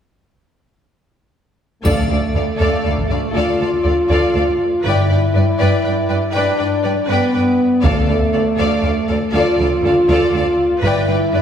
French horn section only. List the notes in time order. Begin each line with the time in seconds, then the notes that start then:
1.82 A3
3.34 F4
4.85 E4
6.34 D4
7.08 B3
7.83 A3
9.33 F4
10.84 E4